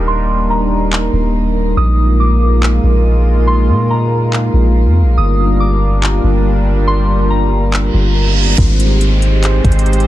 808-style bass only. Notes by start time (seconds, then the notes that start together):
Already playing: D#1
1.13 D#1
1.77 A#1
2.84 A#1
3.69 A#2
4.54 A#1
4.86 F2
5.02 A#1
5.18 G1
6.24 G1
7.94 G1
8.58 G#1
9.65 G#1